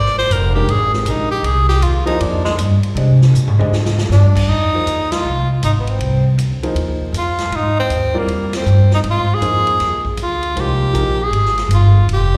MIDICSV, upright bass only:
0, 0, Header, 1, 3, 480
1, 0, Start_track
1, 0, Tempo, 379987
1, 1827, Time_signature, 4, 2, 24, 8
1, 15626, End_track
2, 0, Start_track
2, 0, Title_t, "Upright bass"
2, 0, Program_c, 0, 32
2, 0, Note_on_c, 0, 32, 86
2, 365, Note_off_c, 0, 32, 0
2, 372, Note_on_c, 0, 29, 88
2, 845, Note_off_c, 0, 29, 0
2, 858, Note_on_c, 0, 32, 79
2, 1324, Note_off_c, 0, 32, 0
2, 1331, Note_on_c, 0, 34, 93
2, 1796, Note_off_c, 0, 34, 0
2, 1803, Note_on_c, 0, 36, 84
2, 2280, Note_off_c, 0, 36, 0
2, 2287, Note_on_c, 0, 39, 94
2, 2761, Note_off_c, 0, 39, 0
2, 2784, Note_on_c, 0, 41, 86
2, 3233, Note_off_c, 0, 41, 0
2, 3241, Note_on_c, 0, 43, 102
2, 3542, Note_off_c, 0, 43, 0
2, 3728, Note_on_c, 0, 48, 97
2, 4201, Note_off_c, 0, 48, 0
2, 4214, Note_on_c, 0, 46, 99
2, 4385, Note_off_c, 0, 46, 0
2, 4385, Note_on_c, 0, 44, 64
2, 4531, Note_off_c, 0, 44, 0
2, 4539, Note_on_c, 0, 41, 75
2, 4690, Note_off_c, 0, 41, 0
2, 4700, Note_on_c, 0, 44, 87
2, 5168, Note_off_c, 0, 44, 0
2, 5173, Note_on_c, 0, 43, 96
2, 5644, Note_off_c, 0, 43, 0
2, 5655, Note_on_c, 0, 41, 84
2, 6125, Note_off_c, 0, 41, 0
2, 6140, Note_on_c, 0, 39, 81
2, 6607, Note_off_c, 0, 39, 0
2, 6616, Note_on_c, 0, 36, 77
2, 7085, Note_off_c, 0, 36, 0
2, 7101, Note_on_c, 0, 32, 88
2, 7558, Note_off_c, 0, 32, 0
2, 7566, Note_on_c, 0, 36, 85
2, 8041, Note_off_c, 0, 36, 0
2, 8057, Note_on_c, 0, 38, 90
2, 8514, Note_off_c, 0, 38, 0
2, 8522, Note_on_c, 0, 39, 78
2, 8823, Note_off_c, 0, 39, 0
2, 8999, Note_on_c, 0, 41, 89
2, 9472, Note_off_c, 0, 41, 0
2, 9480, Note_on_c, 0, 44, 89
2, 9958, Note_off_c, 0, 44, 0
2, 9974, Note_on_c, 0, 39, 90
2, 10429, Note_off_c, 0, 39, 0
2, 10437, Note_on_c, 0, 41, 82
2, 10917, Note_off_c, 0, 41, 0
2, 10938, Note_on_c, 0, 43, 98
2, 11408, Note_off_c, 0, 43, 0
2, 11416, Note_on_c, 0, 44, 87
2, 11875, Note_off_c, 0, 44, 0
2, 11883, Note_on_c, 0, 41, 94
2, 12360, Note_off_c, 0, 41, 0
2, 12377, Note_on_c, 0, 39, 79
2, 12673, Note_off_c, 0, 39, 0
2, 12852, Note_on_c, 0, 38, 92
2, 13320, Note_off_c, 0, 38, 0
2, 13328, Note_on_c, 0, 36, 78
2, 13804, Note_off_c, 0, 36, 0
2, 13811, Note_on_c, 0, 34, 81
2, 14272, Note_off_c, 0, 34, 0
2, 14279, Note_on_c, 0, 32, 78
2, 14759, Note_off_c, 0, 32, 0
2, 14766, Note_on_c, 0, 31, 97
2, 15243, Note_off_c, 0, 31, 0
2, 15252, Note_on_c, 0, 29, 85
2, 15626, Note_off_c, 0, 29, 0
2, 15626, End_track
3, 0, Start_track
3, 0, Title_t, "Muted upright bass strokes"
3, 8850, Note_on_c, 9, 29, 38
3, 8976, Note_off_c, 9, 29, 0
3, 12696, Note_on_c, 9, 29, 36
3, 12822, Note_off_c, 9, 29, 0
3, 15626, End_track
0, 0, End_of_file